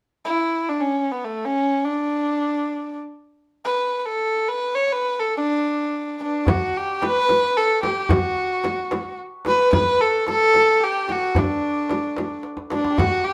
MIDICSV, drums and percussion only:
0, 0, Header, 1, 3, 480
1, 0, Start_track
1, 0, Tempo, 542005
1, 1411, Time_signature, 6, 3, 24, 8
1, 11807, End_track
2, 0, Start_track
2, 0, Title_t, "Frame drum"
2, 5738, Note_on_c, 9, 64, 80
2, 5826, Note_off_c, 9, 64, 0
2, 6222, Note_on_c, 9, 64, 60
2, 6311, Note_off_c, 9, 64, 0
2, 6459, Note_on_c, 9, 64, 60
2, 6548, Note_off_c, 9, 64, 0
2, 6936, Note_on_c, 9, 64, 59
2, 7025, Note_off_c, 9, 64, 0
2, 7177, Note_on_c, 9, 64, 90
2, 7266, Note_off_c, 9, 64, 0
2, 7656, Note_on_c, 9, 64, 64
2, 7745, Note_off_c, 9, 64, 0
2, 7898, Note_on_c, 9, 64, 59
2, 7987, Note_off_c, 9, 64, 0
2, 8378, Note_on_c, 9, 64, 60
2, 8467, Note_off_c, 9, 64, 0
2, 8617, Note_on_c, 9, 64, 88
2, 8705, Note_off_c, 9, 64, 0
2, 9102, Note_on_c, 9, 64, 57
2, 9191, Note_off_c, 9, 64, 0
2, 9343, Note_on_c, 9, 64, 53
2, 9432, Note_off_c, 9, 64, 0
2, 9822, Note_on_c, 9, 64, 51
2, 9911, Note_off_c, 9, 64, 0
2, 10061, Note_on_c, 9, 64, 81
2, 10150, Note_off_c, 9, 64, 0
2, 10545, Note_on_c, 9, 64, 57
2, 10633, Note_off_c, 9, 64, 0
2, 10788, Note_on_c, 9, 64, 55
2, 10876, Note_off_c, 9, 64, 0
2, 11262, Note_on_c, 9, 64, 57
2, 11350, Note_off_c, 9, 64, 0
2, 11507, Note_on_c, 9, 64, 79
2, 11595, Note_off_c, 9, 64, 0
2, 11807, End_track
3, 0, Start_track
3, 0, Title_t, "Tombak"
3, 5728, Note_on_c, 9, 64, 86
3, 5816, Note_off_c, 9, 64, 0
3, 6216, Note_on_c, 9, 63, 61
3, 6305, Note_off_c, 9, 63, 0
3, 6334, Note_on_c, 9, 62, 22
3, 6423, Note_off_c, 9, 62, 0
3, 6456, Note_on_c, 9, 63, 67
3, 6545, Note_off_c, 9, 63, 0
3, 6579, Note_on_c, 9, 62, 21
3, 6668, Note_off_c, 9, 62, 0
3, 6937, Note_on_c, 9, 63, 65
3, 7026, Note_off_c, 9, 63, 0
3, 7166, Note_on_c, 9, 64, 92
3, 7255, Note_off_c, 9, 64, 0
3, 7650, Note_on_c, 9, 63, 62
3, 7738, Note_off_c, 9, 63, 0
3, 7773, Note_on_c, 9, 62, 22
3, 7862, Note_off_c, 9, 62, 0
3, 7892, Note_on_c, 9, 63, 70
3, 7981, Note_off_c, 9, 63, 0
3, 8010, Note_on_c, 9, 62, 21
3, 8099, Note_off_c, 9, 62, 0
3, 8367, Note_on_c, 9, 63, 62
3, 8456, Note_off_c, 9, 63, 0
3, 8614, Note_on_c, 9, 64, 67
3, 8703, Note_off_c, 9, 64, 0
3, 9092, Note_on_c, 9, 63, 62
3, 9180, Note_off_c, 9, 63, 0
3, 9208, Note_on_c, 9, 62, 24
3, 9297, Note_off_c, 9, 62, 0
3, 9331, Note_on_c, 9, 63, 59
3, 9420, Note_off_c, 9, 63, 0
3, 9451, Note_on_c, 9, 62, 22
3, 9540, Note_off_c, 9, 62, 0
3, 10051, Note_on_c, 9, 64, 79
3, 10140, Note_off_c, 9, 64, 0
3, 10534, Note_on_c, 9, 63, 66
3, 10622, Note_off_c, 9, 63, 0
3, 10773, Note_on_c, 9, 63, 68
3, 10862, Note_off_c, 9, 63, 0
3, 10887, Note_on_c, 9, 62, 23
3, 10976, Note_off_c, 9, 62, 0
3, 11010, Note_on_c, 9, 63, 48
3, 11098, Note_off_c, 9, 63, 0
3, 11130, Note_on_c, 9, 62, 62
3, 11219, Note_off_c, 9, 62, 0
3, 11251, Note_on_c, 9, 63, 63
3, 11339, Note_off_c, 9, 63, 0
3, 11374, Note_on_c, 9, 62, 72
3, 11463, Note_off_c, 9, 62, 0
3, 11497, Note_on_c, 9, 64, 80
3, 11586, Note_off_c, 9, 64, 0
3, 11807, End_track
0, 0, End_of_file